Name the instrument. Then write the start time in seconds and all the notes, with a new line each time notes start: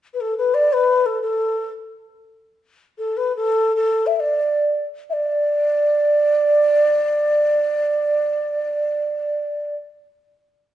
xiao
0.14 B4
0.21 A4
0.38 B4
0.54 D5
0.73 B4
1.06 A4
1.22 A4
2.98 A4
3.17 B4
3.36 A4
3.76 A4
4.07 E5
4.16 D5 E5
5.10 D5 E5